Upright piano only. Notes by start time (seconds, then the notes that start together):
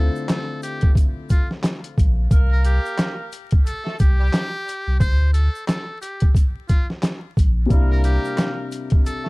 Already playing: D3 A3 C4 E4 F4
7.66 C3 G3 A#3 D4
7.71 E4